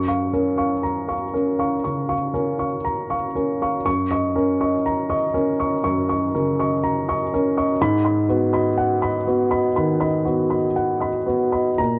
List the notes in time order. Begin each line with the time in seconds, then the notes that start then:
Already playing: F#2 C#6
0.08 F5 C#6
0.33 C#4 A#4
0.57 F5 C#6
0.83 A#5
1.08 F5 C#6
1.34 C#4 A#4
1.59 F5 C#6
1.84 C#3 C#6
2.09 F5 C#6
2.34 C#4 A#4
2.59 F5 C#6
2.85 A#5
3.10 F5 C#6
3.35 C#4 A#4
3.62 F5 C#6
3.85 F#2 C#6
4.11 D#5 C#6
4.36 C#4 A#4
4.61 D#5 C#6
4.86 A#5
5.10 D#5 C#6
5.34 C#4 A#4
5.59 D#5 C#6
5.84 F#2 C#6
6.09 D#5 C#6
6.34 C#3 A#4
6.59 D#5 C#6
6.84 A#5
7.09 D#5 C#6
7.34 C#4 A#4
7.57 D#5 C#6
7.81 G#2 B5
8.04 D#5 B5
8.29 B3 F#4
8.53 D#5 B5
8.78 F#5
9.02 D#5 B5
9.27 B3 F#4
9.51 D#5 B5
9.76 D#3 B5
10.00 D#5 B5
10.25 B3 F#4
10.50 D#5 B5
10.76 F#5
11.00 D#5 B5
11.26 B3 F#4
11.52 D#5 B5
11.78 A#2 A#5